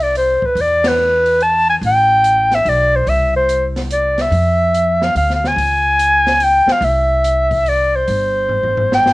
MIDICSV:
0, 0, Header, 1, 5, 480
1, 0, Start_track
1, 0, Key_signature, 0, "major"
1, 0, Tempo, 417246
1, 644, Time_signature, 3, 2, 24, 8
1, 10505, End_track
2, 0, Start_track
2, 0, Title_t, "Clarinet"
2, 0, Program_c, 0, 71
2, 34, Note_on_c, 0, 74, 79
2, 182, Note_off_c, 0, 74, 0
2, 200, Note_on_c, 0, 72, 77
2, 525, Note_on_c, 0, 71, 77
2, 542, Note_off_c, 0, 72, 0
2, 700, Note_on_c, 0, 74, 85
2, 718, Note_off_c, 0, 71, 0
2, 1013, Note_on_c, 0, 71, 88
2, 1030, Note_off_c, 0, 74, 0
2, 1640, Note_on_c, 0, 81, 91
2, 1657, Note_off_c, 0, 71, 0
2, 1937, Note_off_c, 0, 81, 0
2, 1954, Note_on_c, 0, 80, 87
2, 2020, Note_off_c, 0, 80, 0
2, 2144, Note_on_c, 0, 79, 99
2, 2929, Note_on_c, 0, 76, 86
2, 2946, Note_off_c, 0, 79, 0
2, 3092, Note_on_c, 0, 74, 83
2, 3110, Note_off_c, 0, 76, 0
2, 3404, Note_on_c, 0, 72, 80
2, 3421, Note_off_c, 0, 74, 0
2, 3552, Note_on_c, 0, 76, 93
2, 3569, Note_off_c, 0, 72, 0
2, 3853, Note_off_c, 0, 76, 0
2, 3867, Note_on_c, 0, 72, 81
2, 4213, Note_off_c, 0, 72, 0
2, 4514, Note_on_c, 0, 74, 76
2, 4846, Note_on_c, 0, 76, 84
2, 4863, Note_off_c, 0, 74, 0
2, 5796, Note_on_c, 0, 77, 78
2, 5813, Note_off_c, 0, 76, 0
2, 5942, Note_off_c, 0, 77, 0
2, 5950, Note_on_c, 0, 77, 76
2, 6132, Note_off_c, 0, 77, 0
2, 6151, Note_on_c, 0, 77, 74
2, 6301, Note_on_c, 0, 80, 92
2, 6318, Note_off_c, 0, 77, 0
2, 7408, Note_on_c, 0, 79, 89
2, 7425, Note_off_c, 0, 80, 0
2, 7731, Note_on_c, 0, 77, 83
2, 7748, Note_off_c, 0, 79, 0
2, 7870, Note_on_c, 0, 76, 87
2, 7887, Note_off_c, 0, 77, 0
2, 8842, Note_on_c, 0, 74, 76
2, 8859, Note_off_c, 0, 76, 0
2, 9154, Note_on_c, 0, 72, 75
2, 9171, Note_off_c, 0, 74, 0
2, 10260, Note_off_c, 0, 72, 0
2, 10285, Note_on_c, 0, 79, 93
2, 10505, Note_off_c, 0, 79, 0
2, 10505, End_track
3, 0, Start_track
3, 0, Title_t, "Upright bass"
3, 0, Program_c, 1, 32
3, 0, Note_on_c, 1, 36, 75
3, 435, Note_off_c, 1, 36, 0
3, 636, Note_on_c, 1, 40, 74
3, 2034, Note_off_c, 1, 40, 0
3, 2086, Note_on_c, 1, 33, 83
3, 2999, Note_off_c, 1, 33, 0
3, 3050, Note_on_c, 1, 35, 75
3, 3494, Note_off_c, 1, 35, 0
3, 3526, Note_on_c, 1, 36, 78
3, 4918, Note_off_c, 1, 36, 0
3, 4957, Note_on_c, 1, 41, 76
3, 5873, Note_off_c, 1, 41, 0
3, 5928, Note_on_c, 1, 38, 71
3, 6372, Note_off_c, 1, 38, 0
3, 6398, Note_on_c, 1, 37, 75
3, 7629, Note_off_c, 1, 37, 0
3, 7831, Note_on_c, 1, 36, 79
3, 9230, Note_off_c, 1, 36, 0
3, 9291, Note_on_c, 1, 31, 75
3, 10505, Note_off_c, 1, 31, 0
3, 10505, End_track
4, 0, Start_track
4, 0, Title_t, "Muted upright bass strokes"
4, 486, Note_on_c, 9, 29, 33
4, 601, Note_off_c, 9, 29, 0
4, 7666, Note_on_c, 9, 29, 39
4, 7782, Note_off_c, 9, 29, 0
4, 10505, End_track
5, 0, Start_track
5, 0, Title_t, "Drums"
5, 5, Note_on_c, 9, 46, 33
5, 120, Note_off_c, 9, 46, 0
5, 178, Note_on_c, 9, 46, 42
5, 293, Note_off_c, 9, 46, 0
5, 486, Note_on_c, 9, 36, 50
5, 601, Note_off_c, 9, 36, 0
5, 652, Note_on_c, 9, 46, 43
5, 767, Note_off_c, 9, 46, 0
5, 967, Note_on_c, 9, 38, 75
5, 970, Note_on_c, 9, 51, 67
5, 1083, Note_off_c, 9, 38, 0
5, 1085, Note_off_c, 9, 51, 0
5, 1448, Note_on_c, 9, 46, 33
5, 1563, Note_off_c, 9, 46, 0
5, 1617, Note_on_c, 9, 46, 43
5, 1732, Note_off_c, 9, 46, 0
5, 2102, Note_on_c, 9, 46, 42
5, 2217, Note_off_c, 9, 46, 0
5, 2579, Note_on_c, 9, 42, 54
5, 2694, Note_off_c, 9, 42, 0
5, 2891, Note_on_c, 9, 38, 30
5, 2893, Note_on_c, 9, 46, 33
5, 3006, Note_off_c, 9, 38, 0
5, 3008, Note_off_c, 9, 46, 0
5, 3057, Note_on_c, 9, 46, 44
5, 3172, Note_off_c, 9, 46, 0
5, 3532, Note_on_c, 9, 46, 40
5, 3647, Note_off_c, 9, 46, 0
5, 4014, Note_on_c, 9, 42, 50
5, 4129, Note_off_c, 9, 42, 0
5, 4327, Note_on_c, 9, 38, 36
5, 4329, Note_on_c, 9, 46, 31
5, 4442, Note_off_c, 9, 38, 0
5, 4444, Note_off_c, 9, 46, 0
5, 4494, Note_on_c, 9, 42, 49
5, 4609, Note_off_c, 9, 42, 0
5, 4806, Note_on_c, 9, 38, 38
5, 4808, Note_on_c, 9, 46, 33
5, 4921, Note_off_c, 9, 38, 0
5, 4923, Note_off_c, 9, 46, 0
5, 4971, Note_on_c, 9, 46, 41
5, 5086, Note_off_c, 9, 46, 0
5, 5458, Note_on_c, 9, 42, 48
5, 5573, Note_off_c, 9, 42, 0
5, 5771, Note_on_c, 9, 38, 42
5, 5886, Note_off_c, 9, 38, 0
5, 5935, Note_on_c, 9, 46, 46
5, 6050, Note_off_c, 9, 46, 0
5, 6097, Note_on_c, 9, 38, 28
5, 6212, Note_off_c, 9, 38, 0
5, 6260, Note_on_c, 9, 38, 39
5, 6375, Note_off_c, 9, 38, 0
5, 6423, Note_on_c, 9, 46, 44
5, 6538, Note_off_c, 9, 46, 0
5, 6894, Note_on_c, 9, 42, 52
5, 7010, Note_off_c, 9, 42, 0
5, 7208, Note_on_c, 9, 38, 44
5, 7210, Note_on_c, 9, 46, 35
5, 7323, Note_off_c, 9, 38, 0
5, 7325, Note_off_c, 9, 46, 0
5, 7365, Note_on_c, 9, 46, 46
5, 7480, Note_off_c, 9, 46, 0
5, 7680, Note_on_c, 9, 38, 54
5, 7795, Note_off_c, 9, 38, 0
5, 7843, Note_on_c, 9, 46, 42
5, 7958, Note_off_c, 9, 46, 0
5, 8334, Note_on_c, 9, 42, 52
5, 8449, Note_off_c, 9, 42, 0
5, 8639, Note_on_c, 9, 36, 57
5, 8640, Note_on_c, 9, 46, 36
5, 8754, Note_off_c, 9, 36, 0
5, 8755, Note_off_c, 9, 46, 0
5, 8812, Note_on_c, 9, 46, 43
5, 8927, Note_off_c, 9, 46, 0
5, 9290, Note_on_c, 9, 46, 45
5, 9405, Note_off_c, 9, 46, 0
5, 9764, Note_on_c, 9, 43, 44
5, 9880, Note_off_c, 9, 43, 0
5, 9931, Note_on_c, 9, 43, 50
5, 10046, Note_off_c, 9, 43, 0
5, 10091, Note_on_c, 9, 43, 61
5, 10206, Note_off_c, 9, 43, 0
5, 10260, Note_on_c, 9, 38, 59
5, 10375, Note_off_c, 9, 38, 0
5, 10419, Note_on_c, 9, 38, 68
5, 10505, Note_off_c, 9, 38, 0
5, 10505, End_track
0, 0, End_of_file